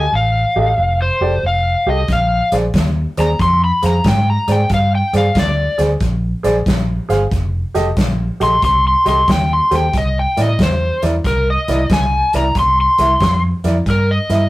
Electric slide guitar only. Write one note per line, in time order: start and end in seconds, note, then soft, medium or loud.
0.00 0.14 G#5 medium
0.15 0.99 F5 medium
1.02 1.43 C5 medium
1.46 1.87 F5 medium
1.90 2.10 D#5 medium
2.12 2.53 F5 medium
3.20 3.40 A#5 medium
3.42 3.62 C6 medium
3.64 3.84 B5 medium
3.86 4.06 A#5 medium
4.08 4.28 G5 medium
4.30 4.49 A#5 medium
4.52 4.71 G5 medium
4.74 4.93 F5 medium
4.95 5.15 G5 medium
5.17 5.37 F5 medium
5.39 5.80 D5 medium
8.43 8.63 C6 medium
8.65 8.85 C6 medium
8.88 9.07 C6 medium
9.09 9.29 C6 medium
9.31 9.51 G5 medium
9.53 9.73 C6 medium
9.75 9.95 G5 medium
9.98 10.17 D#5 medium
10.19 10.39 G5 medium
10.42 10.61 D#5 medium
10.63 11.03 C5 medium
11.27 11.47 A#4 medium
11.50 11.91 D#5 medium
11.93 12.34 G#5 medium
12.37 12.56 A#5 medium
12.59 12.79 C6 medium
12.81 13.43 C6 medium
13.90 14.10 A#4 medium
14.11 14.49 D#5 medium